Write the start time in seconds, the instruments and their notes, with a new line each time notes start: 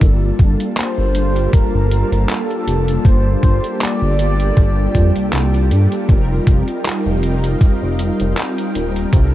0.00 analog synth bass G1, analog polysynth G3 A#3 D4 F4 A4, string machine A#3 G4 F5 A5, kick, closed hi-hat
0.39 analog synth bass G1, kick, closed hi-hat
0.60 closed hi-hat
0.77 soft synth lead C5, clap, closed hi-hat
0.98 analog synth bass G1
1.14 analog polysynth G3 A#3 D4 F4 G4, closed hi-hat
1.36 closed hi-hat
1.53 analog synth bass G1, soft synth lead A#4, kick, closed hi-hat
1.74 analog synth bass G1
1.91 closed hi-hat
2.12 analog synth bass G1, closed hi-hat
2.29 soft synth lead A4, clap, closed hi-hat
2.50 closed hi-hat
2.67 analog synth bass F1, closed hi-hat
2.88 closed hi-hat
3.04 analog synth bass G1, analog polysynth G3 A#3 D4 F4 A4, soft synth lead C5, string machine G5, kick, closed hi-hat
3.43 analog synth bass G1, kick, closed hi-hat
3.64 closed hi-hat
3.81 soft synth lead D5, clap, closed hi-hat
4.02 analog synth bass G1
4.18 analog polysynth G3 A#3 D4 F4 A4, closed hi-hat
4.40 closed hi-hat
4.57 analog synth bass G1, kick, closed hi-hat
4.95 analog synth bass F2, kick, closed hi-hat
5.16 analog synth bass C2, closed hi-hat
5.33 analog synth bass C2, clap, closed hi-hat
5.54 closed hi-hat
5.71 analog synth bass G2, closed hi-hat
5.92 closed hi-hat
6.07 analog synth bass F1, analog polysynth G3 C4 D#4 F4 A#4, string machine D#5 F5 G5, kick, closed hi-hat
6.47 analog synth bass F1, kick, closed hi-hat
6.68 closed hi-hat
6.85 clap, closed hi-hat
7.06 analog synth bass F1
7.22 analog polysynth G3 C4 D#4 F4 A#4, closed hi-hat
7.44 closed hi-hat
7.61 analog synth bass F1, kick, closed hi-hat
7.82 analog synth bass F1
7.99 closed hi-hat
8.20 analog synth bass F1, closed hi-hat
8.37 clap, closed hi-hat
8.58 closed hi-hat
8.75 analog synth bass D#1, closed hi-hat
8.96 closed hi-hat
9.11 analog synth bass C2, analog polysynth C4 D4 E4 A4 A#4, string machine D5 E5, kick, closed hi-hat